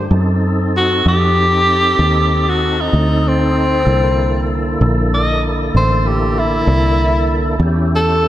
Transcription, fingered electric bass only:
0.11 1.02 F#2 medium
1.06 1.96 F2 medium
1.99 2.90 D#2 medium
2.93 3.84 D2 medium
3.87 4.77 C2 medium
4.81 5.71 A#1 medium
5.75 6.65 A1 medium
6.67 7.58 C2 medium
7.60 8.28 E2 medium

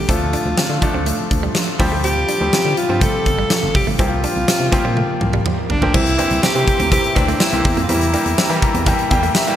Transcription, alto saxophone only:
0.00 0.12 G4 medium
0.10 1.07 F4 medium
2.05 2.80 G4 loud
2.78 3.04 F4 medium
3.02 3.75 A4 loud
3.76 3.87 G4 medium
4.00 5.42 F4 medium
5.71 5.96 D4 medium
5.95 6.45 E4 loud
6.43 6.92 G4 loud
6.92 7.18 G4 loud
7.17 7.40 D4 medium
7.41 7.80 E4 loud
7.83 7.91 F4 medium
7.90 8.87 E4 medium

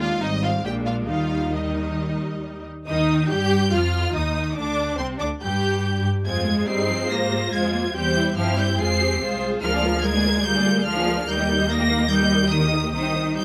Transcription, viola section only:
0.00 0.21 G#3 medium
0.00 0.20 D4 medium
0.21 0.64 G3 medium
0.21 0.63 C4 medium
0.64 1.08 G#3 medium
0.64 1.08 D4 medium
1.08 1.51 G3 medium
1.08 1.52 D#4 medium
1.53 2.64 G3 medium
1.53 2.64 D#4 medium
2.88 3.27 D#4 loud
3.30 3.73 G4 loud
3.72 4.14 F4 medium
4.14 4.57 D#4 medium
4.56 4.98 D4 loud
4.99 5.07 C4 loud
5.21 5.29 D4 medium
5.43 6.04 G4 loud
6.26 6.46 C4 medium
6.26 7.48 G#4 medium
6.47 6.68 G#3 medium
6.69 6.89 G3 loud
6.88 7.09 F3 medium
7.10 7.18 F3 medium
7.31 7.39 G3 medium
7.52 7.73 G#3 medium
7.52 7.94 F4 medium
7.73 7.81 A#3 medium
7.94 8.35 C4 medium
7.94 8.15 G4 loud
8.16 8.36 E4 medium
8.37 8.79 C4 medium
8.37 8.79 E4 medium
8.79 9.21 G#3 medium
8.79 9.01 F4 medium
9.01 9.22 G4 medium
9.22 9.61 G#3 medium
9.22 9.63 G#4 medium
9.62 9.72 G#3 medium
9.62 9.72 F4 medium
9.73 9.83 A#3 medium
9.73 9.83 D4 medium
9.83 9.94 G#3 medium
9.83 9.94 F4 medium
9.94 10.04 A#3 medium
9.94 10.04 D4 medium
10.04 10.14 G#3 medium
10.04 10.14 F4 medium
10.15 10.25 A#3 medium
10.15 10.25 D4 medium
10.24 10.35 G#3 medium
10.24 10.35 F4 medium
10.36 10.46 A#3 medium
10.36 10.46 D4 medium
10.46 10.55 G#3 medium
10.46 10.55 F4 medium
10.56 10.67 A#3 medium
10.56 10.66 D4 medium
10.65 10.76 G#3 medium
10.65 10.76 F4 medium
10.76 10.87 A#3 medium
10.76 10.87 D4 medium
10.86 10.96 G#3 medium
10.86 10.96 F4 medium
10.96 11.07 A#3 medium
10.96 11.07 D4 medium
11.07 11.18 G#3 medium
11.07 11.17 F4 medium
11.17 11.28 A#3 medium
11.17 11.28 D4 medium
11.28 11.38 G3 medium
11.28 11.38 D#4 medium
11.38 11.49 A#3 medium
11.38 11.49 G4 medium
11.49 11.59 G3 medium
11.49 11.59 D#4 medium
11.60 11.70 A#3 medium
11.60 11.70 G4 medium
11.70 11.79 G3 medium
11.70 11.79 D#4 medium
11.79 11.90 A#3 medium
11.79 11.90 G4 medium
11.89 12.00 G3 medium
11.89 12.00 D#4 medium
12.00 12.10 A#3 medium
12.00 12.10 G4 medium
12.10 12.20 G3 medium
12.10 12.20 D#4 medium
12.21 12.31 A#3 medium
12.21 12.31 G4 medium
12.31 12.42 G3 medium
12.31 12.42 D#4 medium
12.42 12.52 A#3 medium
12.42 12.52 G4 medium
12.52 12.61 G3 medium
12.52 12.62 D#4 medium
12.62 12.72 A#3 medium
12.62 12.72 G4 medium
12.72 12.83 G3 medium
12.72 12.83 D#4 medium
12.83 12.93 A#3 medium
12.83 12.93 G4 medium
12.93 13.02 C4 medium
12.93 13.02 D#4 medium
13.03 13.13 C4 medium
13.03 13.13 D#4 medium
13.14 13.23 C4 medium
13.14 13.23 D#4 medium
13.24 13.34 C4 medium
13.24 13.34 D#4 medium
13.35 13.44 C4 medium
13.35 13.44 D#4 medium

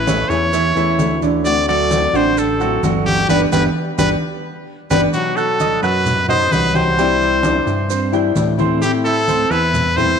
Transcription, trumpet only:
0.00 0.30 B4 medium
0.29 1.22 C#5 medium
1.45 1.67 D5 loud
1.69 2.18 D5 loud
2.16 2.40 C5 medium
2.39 2.84 A4 medium
3.06 3.28 G4 loud
3.30 3.41 B4 medium
3.52 3.63 B4 loud
3.99 4.10 B4 medium
4.91 5.02 B4 medium
5.13 5.38 F#4 medium
5.36 5.82 A4 medium
5.83 6.26 B4 medium
6.29 6.54 C5 loud
6.52 6.77 B4 loud
6.76 8.13 C5 loud
8.82 8.92 G4 medium
9.05 9.52 A4 loud
9.51 9.98 B4 loud
9.97 10.20 C5 loud

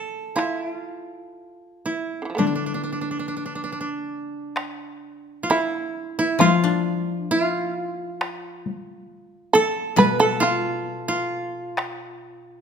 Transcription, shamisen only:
0.36 1.51 F4 medium
1.51 2.35 E4 medium
2.22 2.25 D3 soft
2.22 2.34 E3 soft
2.30 2.36 F3 soft
2.35 2.49 A3 soft
2.35 2.52 B3 soft
2.39 4.01 D4 soft
5.51 6.37 E4 medium
6.40 7.72 F4 medium
9.53 9.94 A4 loud
9.98 10.18 B4 medium
10.20 10.40 A4 loud
10.42 11.28 F4 medium

